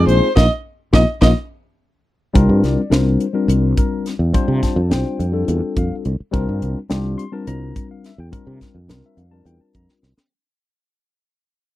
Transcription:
Already playing: G#3 C4 D#4 F4 G#4
0.07 A#1 C5, closed hi-hat
0.35 A#1 A#3 D#4 F4 D#5, kick, snare
0.93 A#1 A#3 D#4 F4 D#5, kick, snare
1.21 A#1 A#3 D#4 F4 D#5, kick, snare
2.34 C2 G3 C4 D4 F4 A#4, kick, closed hi-hat
2.49 G2
2.63 C2 D5, snare, closed hi-hat
2.90 C2 G3 C4 D4 F4 A#4 C5, snare, closed hi-hat
3.21 closed hi-hat
3.33 G3 C4 D4 F4 A#4
3.48 C2, closed hi-hat
3.77 A#4, kick, closed hi-hat
4.06 snare, closed hi-hat
4.19 E2
4.33 G3 C4 D4 F4 C5, kick, closed hi-hat
4.48 C3
4.63 A5, kick, snare, closed hi-hat
4.76 F2
4.89 C2 G3 C4 D4 F4 C5 G5, snare, closed hi-hat
5.19 F2, closed hi-hat
5.32 G3 C4 D4 F4 A4
5.48 E2, closed hi-hat
5.62 muted fretless electric bass stroke
5.77 F2 F5, kick, closed hi-hat
5.92 muted fretless electric bass stroke
6.05 C2, closed hi-hat
6.20 muted fretless electric bass stroke
6.32 C2 G3 C4 D4 F4 A#4, kick, closed hi-hat
6.49 G2
6.62 C2, closed hi-hat
6.89 C2 G3 C4 D4 F4 G4, snare, closed hi-hat
7.18 C6, closed hi-hat
7.32 G3 C4 D4 F4 A#4 A5
7.47 C2 A#5, closed hi-hat
7.76 kick, closed hi-hat
7.91 F5
8.04 E5, snare, closed hi-hat
8.18 E2 G5
8.31 G3 C4 D4 F4 A#4, kick, closed hi-hat
8.47 C3
8.61 kick, snare, closed hi-hat
8.75 F2
8.88 C2 G3 C4 D4 F4 A#4, snare, closed hi-hat
9.06 E5
9.17 F2 F5, closed hi-hat
9.31 G3 C4 D4 F4 A#4 A5
9.45 E2 G5, closed hi-hat
9.61 A5
9.75 F2 A#5, kick, closed hi-hat
9.89 muted fretless electric bass stroke, snare
10.03 C2, snare
10.17 muted fretless electric bass stroke, snare

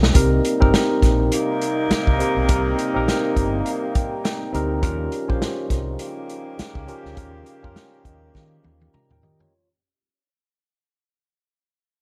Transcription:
Already playing: G3 C#4 F4 C#5 A#5
0.03 snare
0.14 C2 C3 G3 A#3 C4 D#4 G4 A#4, kick, closed hi-hat
0.45 closed hi-hat
0.60 G1 C4 D#4 G4 A#4, kick
0.74 snare, closed hi-hat
1.02 A#1, kick, snare, closed hi-hat
1.32 C3 A#3 D#4, closed hi-hat
1.62 closed hi-hat
1.91 muted fingered electric bass stroke, snare, closed hi-hat
2.07 C2, kick
2.19 C4 D#4 G4 A#4, closed hi-hat
2.36 B1
2.48 C2 C4 D#4 G4 A#4, kick, closed hi-hat
2.79 closed hi-hat
2.94 A#1 C4 D#4 G4 A#4
3.08 snare, closed hi-hat
3.36 G1 D#5, kick, closed hi-hat
3.65 F5, closed hi-hat
3.95 G5, kick, closed hi-hat
4.24 G5, snare, closed hi-hat
4.53 D2 C4 D#4 G4 A#4 A#5, closed hi-hat
4.82 D#2 C#3 F3 C#4 D#4 F4 G4 A#4, kick, closed hi-hat
5.12 closed hi-hat
5.28 A#1 C#4 F4 G4 C5, kick
5.42 snare, closed hi-hat
5.70 C2, kick, snare, closed hi-hat
5.99 C#3 A#3 G4, closed hi-hat
6.29 closed hi-hat
6.59 muted fingered electric bass stroke, snare, closed hi-hat
6.75 C#2, kick
6.87 C#4 F4 G4 A#4, closed hi-hat
7.05 D2, snare
7.16 D#2 C#4 F4 G4 A#4, kick, closed hi-hat
7.46 closed hi-hat
7.63 F2 C#4 F4 G4 A#4, kick
7.76 snare, closed hi-hat
8.05 D#2 D#5, kick, closed hi-hat
8.35 D#3 G5, kick, snare
8.64 D#2, high tom
8.82 high tom
8.94 A#5, muted fingered electric bass stroke, mid tom
9.11 D#2 A#4 G5, mid tom
9.23 D#3 G4 D#5, floor tom
9.40 F4 C#5, floor tom

